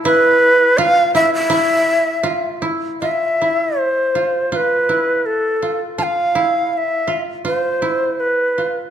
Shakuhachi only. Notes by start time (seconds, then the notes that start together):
0.05 B4
0.78 F5
1.15 E5
1.34 E5
3.01 E5
3.78 C5
4.52 C5
4.56 B4
5.26 A4
5.98 A5
6.03 F5
6.73 F5
6.77 E5
7.46 C5
8.20 B4